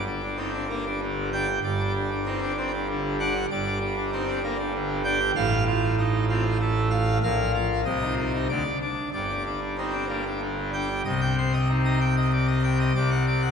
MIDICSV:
0, 0, Header, 1, 2, 480
1, 0, Start_track
1, 0, Key_signature, -2, "minor"
1, 0, Tempo, 622407
1, 1259, Time_signature, 3, 2, 24, 8
1, 6058, Tempo, 636943
1, 10319, End_track
2, 0, Start_track
2, 0, Title_t, "Pipe organ"
2, 0, Program_c, 0, 19
2, 0, Note_on_c, 0, 31, 80
2, 0, Note_on_c, 0, 43, 81
2, 47, Note_on_c, 0, 62, 62
2, 162, Note_off_c, 0, 62, 0
2, 177, Note_on_c, 0, 62, 57
2, 286, Note_off_c, 0, 62, 0
2, 290, Note_on_c, 0, 60, 47
2, 291, Note_on_c, 0, 63, 47
2, 397, Note_off_c, 0, 63, 0
2, 415, Note_on_c, 0, 62, 66
2, 498, Note_off_c, 0, 60, 0
2, 524, Note_off_c, 0, 62, 0
2, 541, Note_on_c, 0, 62, 62
2, 542, Note_on_c, 0, 58, 61
2, 648, Note_off_c, 0, 58, 0
2, 650, Note_off_c, 0, 62, 0
2, 665, Note_on_c, 0, 62, 65
2, 770, Note_off_c, 0, 62, 0
2, 787, Note_on_c, 0, 50, 68
2, 998, Note_off_c, 0, 50, 0
2, 1027, Note_on_c, 0, 79, 99
2, 1031, Note_on_c, 0, 62, 64
2, 1133, Note_off_c, 0, 62, 0
2, 1223, Note_off_c, 0, 31, 0
2, 1223, Note_off_c, 0, 43, 0
2, 1227, Note_off_c, 0, 79, 0
2, 1264, Note_on_c, 0, 31, 83
2, 1266, Note_on_c, 0, 43, 76
2, 1267, Note_on_c, 0, 74, 79
2, 1387, Note_on_c, 0, 62, 67
2, 1479, Note_off_c, 0, 74, 0
2, 1488, Note_off_c, 0, 62, 0
2, 1504, Note_on_c, 0, 62, 72
2, 1615, Note_off_c, 0, 62, 0
2, 1630, Note_on_c, 0, 62, 65
2, 1734, Note_off_c, 0, 62, 0
2, 1744, Note_on_c, 0, 60, 59
2, 1745, Note_on_c, 0, 63, 58
2, 1846, Note_off_c, 0, 63, 0
2, 1871, Note_on_c, 0, 62, 66
2, 1947, Note_off_c, 0, 60, 0
2, 1972, Note_off_c, 0, 62, 0
2, 1987, Note_on_c, 0, 62, 66
2, 1989, Note_on_c, 0, 60, 64
2, 2092, Note_off_c, 0, 60, 0
2, 2096, Note_off_c, 0, 62, 0
2, 2111, Note_on_c, 0, 62, 68
2, 2213, Note_off_c, 0, 62, 0
2, 2234, Note_on_c, 0, 50, 72
2, 2441, Note_off_c, 0, 50, 0
2, 2468, Note_on_c, 0, 78, 103
2, 2472, Note_on_c, 0, 62, 72
2, 2573, Note_off_c, 0, 62, 0
2, 2667, Note_off_c, 0, 78, 0
2, 2669, Note_off_c, 0, 31, 0
2, 2670, Note_off_c, 0, 43, 0
2, 2703, Note_on_c, 0, 43, 83
2, 2707, Note_on_c, 0, 31, 86
2, 2708, Note_on_c, 0, 74, 79
2, 2826, Note_on_c, 0, 62, 70
2, 2916, Note_off_c, 0, 74, 0
2, 2923, Note_off_c, 0, 62, 0
2, 2939, Note_on_c, 0, 62, 71
2, 3044, Note_off_c, 0, 62, 0
2, 3060, Note_on_c, 0, 62, 69
2, 3164, Note_off_c, 0, 62, 0
2, 3184, Note_on_c, 0, 63, 59
2, 3188, Note_on_c, 0, 60, 63
2, 3282, Note_off_c, 0, 63, 0
2, 3300, Note_on_c, 0, 62, 69
2, 3385, Note_off_c, 0, 60, 0
2, 3404, Note_off_c, 0, 62, 0
2, 3421, Note_on_c, 0, 62, 74
2, 3423, Note_on_c, 0, 58, 63
2, 3523, Note_off_c, 0, 62, 0
2, 3525, Note_off_c, 0, 58, 0
2, 3539, Note_on_c, 0, 62, 68
2, 3642, Note_off_c, 0, 62, 0
2, 3658, Note_on_c, 0, 50, 73
2, 3868, Note_off_c, 0, 50, 0
2, 3892, Note_on_c, 0, 79, 104
2, 3894, Note_on_c, 0, 62, 76
2, 4000, Note_off_c, 0, 62, 0
2, 4095, Note_off_c, 0, 79, 0
2, 4103, Note_off_c, 0, 43, 0
2, 4105, Note_off_c, 0, 31, 0
2, 4128, Note_on_c, 0, 33, 95
2, 4129, Note_on_c, 0, 45, 95
2, 4133, Note_on_c, 0, 77, 117
2, 4347, Note_off_c, 0, 77, 0
2, 4377, Note_on_c, 0, 65, 83
2, 4589, Note_off_c, 0, 65, 0
2, 4617, Note_on_c, 0, 63, 61
2, 4819, Note_off_c, 0, 63, 0
2, 4856, Note_on_c, 0, 60, 68
2, 4858, Note_on_c, 0, 65, 77
2, 4962, Note_off_c, 0, 60, 0
2, 5070, Note_off_c, 0, 65, 0
2, 5091, Note_on_c, 0, 57, 82
2, 5307, Note_off_c, 0, 57, 0
2, 5326, Note_on_c, 0, 77, 86
2, 5535, Note_off_c, 0, 77, 0
2, 5544, Note_off_c, 0, 33, 0
2, 5544, Note_off_c, 0, 45, 0
2, 5577, Note_on_c, 0, 34, 99
2, 5577, Note_on_c, 0, 46, 94
2, 5578, Note_on_c, 0, 77, 112
2, 5793, Note_off_c, 0, 77, 0
2, 5817, Note_on_c, 0, 65, 80
2, 6023, Note_off_c, 0, 65, 0
2, 6046, Note_off_c, 0, 34, 0
2, 6046, Note_off_c, 0, 46, 0
2, 6057, Note_on_c, 0, 48, 78
2, 6058, Note_on_c, 0, 36, 85
2, 6059, Note_on_c, 0, 75, 93
2, 6187, Note_on_c, 0, 63, 61
2, 6274, Note_off_c, 0, 75, 0
2, 6282, Note_off_c, 0, 63, 0
2, 6297, Note_on_c, 0, 63, 71
2, 6406, Note_off_c, 0, 63, 0
2, 6421, Note_on_c, 0, 63, 70
2, 6523, Note_off_c, 0, 63, 0
2, 6525, Note_off_c, 0, 36, 0
2, 6525, Note_off_c, 0, 48, 0
2, 6541, Note_on_c, 0, 50, 83
2, 6541, Note_on_c, 0, 74, 98
2, 6543, Note_on_c, 0, 38, 86
2, 6644, Note_off_c, 0, 50, 0
2, 6645, Note_off_c, 0, 38, 0
2, 6756, Note_off_c, 0, 74, 0
2, 6783, Note_on_c, 0, 62, 66
2, 6989, Note_off_c, 0, 62, 0
2, 7023, Note_on_c, 0, 43, 84
2, 7024, Note_on_c, 0, 74, 78
2, 7025, Note_on_c, 0, 31, 77
2, 7144, Note_on_c, 0, 62, 65
2, 7241, Note_off_c, 0, 74, 0
2, 7252, Note_off_c, 0, 62, 0
2, 7268, Note_on_c, 0, 62, 64
2, 7368, Note_off_c, 0, 62, 0
2, 7383, Note_on_c, 0, 62, 55
2, 7493, Note_off_c, 0, 62, 0
2, 7510, Note_on_c, 0, 60, 52
2, 7512, Note_on_c, 0, 63, 51
2, 7613, Note_off_c, 0, 63, 0
2, 7620, Note_on_c, 0, 62, 58
2, 7714, Note_off_c, 0, 60, 0
2, 7730, Note_off_c, 0, 62, 0
2, 7741, Note_on_c, 0, 58, 56
2, 7745, Note_on_c, 0, 62, 59
2, 7852, Note_off_c, 0, 62, 0
2, 7853, Note_off_c, 0, 58, 0
2, 7867, Note_on_c, 0, 62, 60
2, 7977, Note_off_c, 0, 62, 0
2, 7987, Note_on_c, 0, 50, 61
2, 8207, Note_off_c, 0, 50, 0
2, 8229, Note_on_c, 0, 62, 57
2, 8229, Note_on_c, 0, 79, 82
2, 8340, Note_off_c, 0, 62, 0
2, 8437, Note_off_c, 0, 79, 0
2, 8446, Note_off_c, 0, 43, 0
2, 8447, Note_off_c, 0, 31, 0
2, 8468, Note_on_c, 0, 75, 75
2, 8473, Note_on_c, 0, 36, 82
2, 8475, Note_on_c, 0, 48, 78
2, 8578, Note_off_c, 0, 75, 0
2, 8588, Note_on_c, 0, 79, 91
2, 8698, Note_off_c, 0, 79, 0
2, 8716, Note_on_c, 0, 72, 71
2, 8822, Note_off_c, 0, 72, 0
2, 8829, Note_on_c, 0, 75, 73
2, 8938, Note_off_c, 0, 75, 0
2, 8952, Note_on_c, 0, 63, 62
2, 9071, Note_on_c, 0, 75, 62
2, 9166, Note_off_c, 0, 63, 0
2, 9178, Note_off_c, 0, 75, 0
2, 9189, Note_on_c, 0, 79, 65
2, 9296, Note_off_c, 0, 79, 0
2, 9309, Note_on_c, 0, 75, 71
2, 9416, Note_off_c, 0, 75, 0
2, 9429, Note_on_c, 0, 74, 60
2, 9530, Note_off_c, 0, 74, 0
2, 9542, Note_on_c, 0, 75, 65
2, 9651, Note_off_c, 0, 75, 0
2, 9662, Note_on_c, 0, 79, 71
2, 9770, Note_off_c, 0, 79, 0
2, 9781, Note_on_c, 0, 75, 76
2, 9873, Note_off_c, 0, 36, 0
2, 9874, Note_off_c, 0, 48, 0
2, 9884, Note_off_c, 0, 75, 0
2, 9902, Note_on_c, 0, 74, 77
2, 9903, Note_on_c, 0, 48, 76
2, 9904, Note_on_c, 0, 36, 87
2, 10009, Note_off_c, 0, 74, 0
2, 10015, Note_on_c, 0, 78, 99
2, 10125, Note_off_c, 0, 78, 0
2, 10140, Note_on_c, 0, 74, 79
2, 10247, Note_off_c, 0, 74, 0
2, 10253, Note_on_c, 0, 78, 67
2, 10319, Note_off_c, 0, 36, 0
2, 10319, Note_off_c, 0, 48, 0
2, 10319, Note_off_c, 0, 78, 0
2, 10319, End_track
0, 0, End_of_file